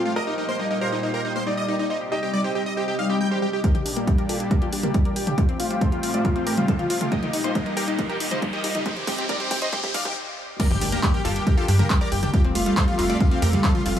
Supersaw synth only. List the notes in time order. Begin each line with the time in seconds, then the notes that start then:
0.05 F4
0.16 D#5
0.27 D#4
0.38 D#4
0.49 C5
0.60 D#4
0.70 D#4
0.81 A#4
0.92 D#4
1.03 D#4
1.14 A#4
1.25 D#4
1.36 C5
1.47 D#4
1.57 D#5
1.68 D#4
1.79 D#4
1.90 D#4
2.12 G4
2.23 G4
2.33 D5
2.44 G4
2.55 G4
2.66 D#5
2.77 G4
2.88 G4
2.99 F5
3.10 G4
3.21 G5
3.31 G4
3.42 G4
3.53 G4
3.64 A#4 D5
3.75 G4
3.86 G4
3.97 G4 A#4
4.07 G4
4.18 G4
4.29 F4 A4
4.40 G4
4.51 G4
4.62 F4 A4
4.73 G4
4.84 G4 A#4
4.95 G4
5.05 A#4 D5
5.16 G4
5.27 G4
5.38 G4
5.60 F4
5.71 F4
5.81 A4 C5
5.92 F4
6.03 F4
6.14 F4 D5
6.25 F4
6.36 F4
6.46 G4 A#4
6.58 F4
6.68 F4 A4
6.79 F4
6.90 F4
7.01 F4
7.12 G4 D#5
7.23 D#4
7.33 D#4
7.44 D#4 C5
7.55 D#4
7.66 D#4
7.77 G4 A#4
7.88 D#4
7.99 D#4
8.09 G4 A#4
8.20 D#4
8.31 D#4 C5
8.42 D#4
8.53 G4 D#5
8.64 D#4
8.75 D#4
8.86 D#4
9.07 G4
9.18 G4
9.29 A#4 D5
9.40 G4
9.51 G4
9.62 C5 D#5
9.73 G4
9.84 G4
9.94 D5 F5
10.05 G4
10.60 A#4 D5
10.71 G4
10.81 G4
10.92 G4 A#4
11.03 G4
11.14 G4
11.25 F4 A4
11.36 G4
11.47 G4
11.57 F4 A4
11.68 G4
11.79 G4 A#4
11.90 G4
12.01 A#4 D5
12.12 G4
12.23 G4
12.34 G4
12.55 F4
12.66 F4
12.77 A4 C5
12.88 F4
12.99 F4
13.10 F4 D5
13.20 F4
13.31 F4
13.42 G4 A#4
13.53 F4
13.64 F4 A4
13.75 F4
13.86 F4